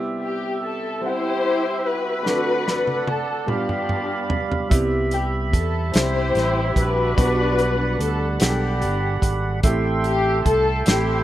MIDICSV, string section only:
0, 0, Header, 1, 2, 480
1, 0, Start_track
1, 0, Key_signature, 1, "major"
1, 0, Tempo, 820232
1, 1317, Time_signature, 6, 3, 24, 8
1, 6575, End_track
2, 0, Start_track
2, 0, Title_t, "String section"
2, 0, Program_c, 0, 48
2, 132, Note_on_c, 0, 67, 84
2, 348, Note_off_c, 0, 67, 0
2, 380, Note_on_c, 0, 69, 88
2, 602, Note_on_c, 0, 64, 73
2, 603, Note_on_c, 0, 67, 68
2, 609, Note_off_c, 0, 69, 0
2, 610, Note_on_c, 0, 72, 103
2, 1083, Note_off_c, 0, 72, 0
2, 1091, Note_on_c, 0, 66, 67
2, 1096, Note_on_c, 0, 71, 94
2, 1296, Note_off_c, 0, 64, 0
2, 1297, Note_off_c, 0, 67, 0
2, 1781, Note_off_c, 0, 66, 0
2, 1806, Note_off_c, 0, 71, 0
2, 1807, Note_on_c, 0, 69, 79
2, 2042, Note_off_c, 0, 69, 0
2, 2046, Note_on_c, 0, 67, 66
2, 2048, Note_on_c, 0, 62, 50
2, 2050, Note_on_c, 0, 59, 53
2, 2581, Note_off_c, 0, 67, 0
2, 2739, Note_off_c, 0, 62, 0
2, 2740, Note_off_c, 0, 59, 0
2, 3007, Note_on_c, 0, 67, 74
2, 3113, Note_off_c, 0, 67, 0
2, 3240, Note_on_c, 0, 69, 79
2, 3462, Note_off_c, 0, 69, 0
2, 3473, Note_on_c, 0, 72, 100
2, 3475, Note_on_c, 0, 67, 72
2, 3477, Note_on_c, 0, 64, 67
2, 3955, Note_off_c, 0, 72, 0
2, 3972, Note_on_c, 0, 62, 68
2, 3973, Note_on_c, 0, 71, 93
2, 3974, Note_on_c, 0, 66, 68
2, 4173, Note_off_c, 0, 67, 0
2, 4174, Note_off_c, 0, 64, 0
2, 4661, Note_off_c, 0, 62, 0
2, 4662, Note_off_c, 0, 66, 0
2, 4662, Note_off_c, 0, 71, 0
2, 4691, Note_on_c, 0, 69, 82
2, 4924, Note_off_c, 0, 69, 0
2, 4930, Note_on_c, 0, 62, 52
2, 4933, Note_on_c, 0, 67, 67
2, 5442, Note_off_c, 0, 67, 0
2, 5620, Note_off_c, 0, 62, 0
2, 5891, Note_on_c, 0, 67, 95
2, 6108, Note_off_c, 0, 67, 0
2, 6129, Note_on_c, 0, 69, 94
2, 6363, Note_off_c, 0, 69, 0
2, 6370, Note_on_c, 0, 60, 63
2, 6373, Note_on_c, 0, 64, 67
2, 6375, Note_on_c, 0, 67, 87
2, 6575, Note_off_c, 0, 60, 0
2, 6575, Note_off_c, 0, 64, 0
2, 6575, Note_off_c, 0, 67, 0
2, 6575, End_track
0, 0, End_of_file